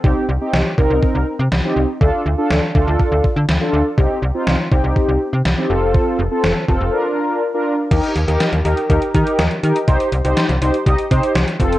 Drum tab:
CC |----------------|----------------|----------------|----------------|
HH |----------------|----------------|----------------|----------------|
SD |----o-------o---|----o-------o---|----o-------o---|----o-----------|
BD |o-----o-o-------|o-----o-o-o-----|o-----o-o-------|o-----o---------|

CC |x---------------|----------------|
HH |xxxxxxxxxxxxxxxx|xxxxxxxxxxxxxxxx|
SD |----o-------o---|----o-------o---|
BD |o-------o-o-----|o-------o-o---o-|